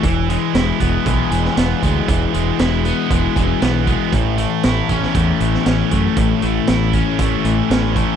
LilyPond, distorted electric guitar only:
\new Staff \with { instrumentName = "Distorted electric guitar" } { \time 4/4 \key e \major \tempo 4 = 117 e8 gis8 e'8 b8 gis8 e8 b8 gis8 | e8 gis8 e'8 b8 gis8 e8 b8 gis8 | a,8 a8 e'8 cis'8 a8 e8 cis'8 a8 | a,8 a8 e'8 cis'8 a8 e8 cis'8 a8 | }